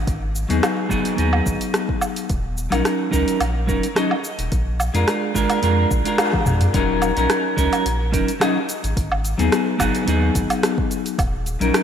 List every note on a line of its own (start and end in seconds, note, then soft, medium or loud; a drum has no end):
0.07 0.46 G#1 medium
0.07 kick loud
0.07 open hi-hat soft
0.07 shaker soft
0.35 shaker medium
0.49 0.61 D#2 medium
0.49 0.87 F#3 medium
0.49 0.87 B3 medium
0.49 0.88 D#4 medium
0.49 0.88 G#4 medium
0.49 open hi-hat soft
0.49 shaker soft
0.63 cross-stick loud
0.63 open hi-hat soft
0.63 low woodblock medium
0.63 shaker soft
0.89 1.03 F#1 loud
0.89 1.14 F#3 loud
0.89 1.14 B3 medium
0.89 1.15 D#4 medium
0.89 1.15 G#4 loud
0.89 kick medium
0.89 cross-stick soft
0.89 shaker medium
1.05 open hi-hat soft
1.05 shaker soft
1.16 1.41 D#2 loud
1.16 2.27 F#3 medium
1.16 2.27 B3 medium
1.16 2.28 D#4 medium
1.16 2.29 G#4 medium
1.16 open hi-hat soft
1.16 shaker soft
1.33 low woodblock medium
1.46 1.58 G#1 medium
1.46 kick medium
1.46 shaker medium
1.61 open hi-hat medium
1.61 shaker soft
1.74 cross-stick loud
1.74 open hi-hat soft
1.74 shaker soft
1.89 kick medium
2.01 low woodblock medium
2.01 shaker medium
2.16 open hi-hat medium
2.16 shaker soft
2.29 2.68 D#1 loud
2.29 kick loud
2.29 open hi-hat soft
2.29 shaker soft
2.58 shaker medium
2.70 2.83 A#1 medium
2.70 3.09 F#3 medium
2.70 3.09 C#4 medium
2.70 3.09 D#4 medium
2.70 3.10 A#4 medium
2.70 open hi-hat medium
2.70 low woodblock medium
2.70 shaker soft
2.85 cross-stick medium
2.85 open hi-hat soft
2.85 shaker soft
3.11 3.25 C#2 loud
3.11 3.38 F#3 medium
3.11 3.39 C#4 medium
3.11 3.39 D#4 medium
3.11 3.39 A#4 loud
3.11 kick medium
3.11 shaker medium
3.28 open hi-hat medium
3.28 shaker soft
3.40 3.70 A#1 medium
3.40 open hi-hat soft
3.40 low woodblock medium
3.40 shaker soft
3.67 3.81 D#1 medium
3.67 3.85 F#3 medium
3.67 3.85 C#4 medium
3.67 3.86 D#4 medium
3.67 3.86 A#4 medium
3.67 kick medium
3.67 shaker medium
3.83 open hi-hat medium
3.83 shaker soft
3.95 4.13 F#3 medium
3.95 4.13 C#4 medium
3.95 4.13 D#4 medium
3.95 4.14 D#5 medium
3.95 cross-stick loud
3.95 open hi-hat soft
3.95 shaker soft
4.11 low woodblock medium
4.24 shaker medium
4.39 4.49 D#1 loud
4.39 open hi-hat medium
4.39 shaker soft
4.52 4.90 A#1 medium
4.52 kick loud
4.52 open hi-hat soft
4.52 shaker soft
4.80 low woodblock medium
4.80 shaker medium
4.94 5.05 F2 medium
4.94 5.32 G#3 medium
4.94 5.32 D4 medium
4.94 5.32 F4 medium
4.94 5.33 A#4 medium
4.94 open hi-hat medium
4.94 shaker soft
5.08 cross-stick loud
5.08 open hi-hat soft
5.08 shaker soft
5.34 5.47 G#1 medium
5.34 5.59 G#3 loud
5.34 5.59 D4 medium
5.34 5.59 F4 medium
5.34 5.60 A#4 loud
5.34 kick medium
5.34 cross-stick soft
5.34 shaker medium
5.50 open hi-hat medium
5.50 low woodblock medium
5.50 shaker soft
5.62 5.86 F2 loud
5.62 6.02 G#3 medium
5.62 6.02 D4 medium
5.62 6.03 F4 medium
5.62 6.03 A#4 medium
5.62 open hi-hat soft
5.62 shaker soft
5.91 6.03 A#1 loud
5.91 kick medium
5.91 shaker medium
6.04 6.72 G#3 medium
6.04 6.72 D4 medium
6.04 6.73 F4 medium
6.04 6.74 A#4 medium
6.04 open hi-hat medium
6.04 shaker soft
6.18 cross-stick loud
6.18 open hi-hat soft
6.18 low woodblock medium
6.18 shaker soft
6.33 kick loud
6.33 high tom soft
6.46 6.69 F2 medium
6.46 kick medium
6.46 mid tom medium
6.46 shaker medium
6.61 mid tom medium
6.61 open hi-hat medium
6.61 shaker soft
6.74 7.12 D#1 loud
6.74 7.10 F#3 loud
6.74 7.11 C#4 medium
6.74 7.11 D#4 medium
6.74 7.11 A#4 loud
6.74 kick loud
6.74 open hi-hat medium
6.74 shaker soft
7.02 open hi-hat soft
7.02 low woodblock medium
7.02 shaker medium
7.17 7.27 A#1 medium
7.17 7.54 F#3 medium
7.17 7.54 C#4 medium
7.17 7.55 D#4 medium
7.17 7.55 A#4 medium
7.17 open hi-hat soft
7.17 shaker soft
7.30 cross-stick loud
7.30 open hi-hat medium
7.30 shaker soft
7.57 7.70 C#2 loud
7.57 7.83 F#3 medium
7.57 7.84 C#4 medium
7.57 7.84 D#4 medium
7.57 7.84 A#4 loud
7.57 kick medium
7.57 open hi-hat soft
7.57 shaker medium
7.73 open hi-hat soft
7.73 low woodblock medium
7.73 shaker soft
7.86 8.15 A#1 medium
7.86 open hi-hat medium
7.86 shaker soft
8.12 8.25 D#1 medium
8.12 8.30 F#3 medium
8.12 8.30 C#4 medium
8.12 8.30 D#4 medium
8.12 8.31 A#4 medium
8.12 kick loud
8.12 open hi-hat soft
8.12 shaker medium
8.28 open hi-hat soft
8.28 shaker soft
8.40 8.57 F#3 medium
8.40 8.58 C#4 medium
8.40 8.58 D#4 medium
8.40 8.58 D#5 medium
8.40 cross-stick loud
8.40 open hi-hat medium
8.40 low woodblock medium
8.40 shaker soft
8.69 open hi-hat soft
8.69 shaker medium
8.84 8.94 G#1 loud
8.84 open hi-hat soft
8.84 shaker soft
8.97 9.35 G#1 loud
8.97 kick loud
8.97 open hi-hat medium
8.97 shaker soft
9.12 low woodblock medium
9.25 open hi-hat soft
9.25 shaker medium
9.38 9.50 D#2 medium
9.38 9.76 F#3 medium
9.38 9.76 B3 medium
9.38 9.76 D#4 medium
9.38 9.77 G#4 medium
9.38 open hi-hat soft
9.38 shaker soft
9.52 cross-stick loud
9.52 open hi-hat medium
9.52 shaker soft
9.79 9.92 F#1 loud
9.79 10.03 F#3 loud
9.79 10.03 B3 loud
9.79 10.04 D#4 medium
9.79 10.04 G#4 loud
9.79 kick medium
9.79 cross-stick soft
9.79 open hi-hat soft
9.79 low woodblock medium
9.79 shaker medium
9.95 open hi-hat soft
9.95 shaker soft
10.05 10.31 D#2 medium
10.05 11.16 F#3 medium
10.05 11.17 B3 medium
10.05 11.17 D#4 medium
10.05 11.18 G#4 medium
10.05 open hi-hat medium
10.05 shaker soft
10.35 10.47 G#1 medium
10.35 kick loud
10.35 open hi-hat soft
10.35 shaker medium
10.50 open hi-hat soft
10.50 low woodblock medium
10.50 shaker soft
10.63 cross-stick loud
10.63 open hi-hat medium
10.63 shaker soft
10.78 kick loud
10.91 open hi-hat soft
10.91 shaker medium
11.06 open hi-hat soft
11.06 shaker soft
11.18 11.57 D#1 loud
11.18 kick loud
11.18 open hi-hat medium
11.18 low woodblock medium
11.18 shaker soft
11.46 open hi-hat soft
11.46 shaker medium
11.60 11.72 A#1 medium
11.60 11.83 F#3 medium
11.60 11.83 C#4 medium
11.60 11.83 D#4 medium
11.60 11.83 A#4 medium
11.60 open hi-hat soft
11.60 shaker soft
11.74 cross-stick loud
11.74 open hi-hat medium
11.74 shaker soft